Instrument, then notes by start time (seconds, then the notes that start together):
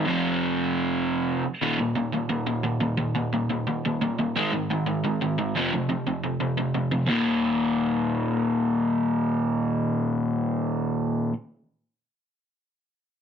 overdriven electric guitar
0.06 F2 C3 F3
1.61 D#2 A#2 D#3
1.79 D#2 A#2
1.96 D#2 A#2
2.13 D#2 A#2
2.30 D#2 A#2
2.47 D#2 A#2
2.63 D#2 A#2
2.80 D#2 A#2
2.97 D#2 A#2
3.15 D#2 A#2
3.33 D#2 A#2
3.50 D#2 A#2
3.67 D#2 A#2
3.85 D#2 A#2
4.02 D#2 A#2
4.19 D#2 A#2
4.36 G#2 D#3 G#3
4.53 G#2 D#3
4.70 G#2 D#3
4.86 G#2 D#3
5.04 G#2 D#3
5.21 G#2 D#3
5.38 G#2 D#3
5.56 F2 C3 F3
5.73 F2 C3
5.89 F2 C3
6.07 F2 C3
6.24 F2 C3
6.40 F2 C3
6.58 F2 C3
6.75 F2 C3
6.91 F2 C3
7.07 D#2 A#2
7.11 D#3